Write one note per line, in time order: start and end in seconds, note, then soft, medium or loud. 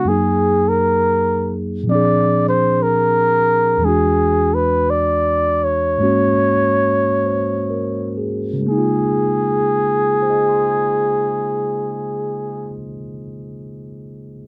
0.05 1.86 F#2 soft
0.05 1.87 F#3 soft
0.05 1.87 A#3 soft
0.05 0.70 G#4 medium
0.09 1.88 D#4 soft
0.09 1.89 G#4 medium
0.69 1.57 A#4 medium
1.83 3.79 A#2 medium
1.83 3.80 F3 soft
1.89 3.81 C4 soft
1.89 3.83 D4 soft
1.89 2.47 D5 medium
1.95 3.85 G#4 medium
2.49 2.84 C5 medium
2.82 3.86 A#4 medium
3.78 5.98 E2 soft
3.78 6.00 E3 soft
3.83 5.99 G#3 soft
3.83 6.02 D4 soft
3.83 4.56 G#4 medium
3.88 6.02 F#4 medium
4.54 4.92 B4 medium
4.90 5.65 D5 medium
5.64 8.18 C#5 medium
5.98 8.64 G#2 medium
5.98 8.58 G#3 soft
5.98 8.65 A#3 soft
5.98 8.66 C#4 soft
6.03 8.66 F#4 medium
7.25 8.12 C5 soft
7.70 8.44 A#4 soft
8.18 8.94 G#4 soft
8.53 12.63 C#3 soft
8.59 12.69 G#3 soft
8.66 12.75 A#3 soft
8.66 12.75 G#4 medium
8.71 12.81 D#4 soft
8.78 12.88 F4 medium
10.15 14.20 G#4 soft
10.22 14.28 C5 soft
10.30 14.36 D#5 soft
10.40 14.45 G#5 soft
10.49 14.47 C6 soft
10.60 14.47 D#6 soft
10.71 14.47 G#6 soft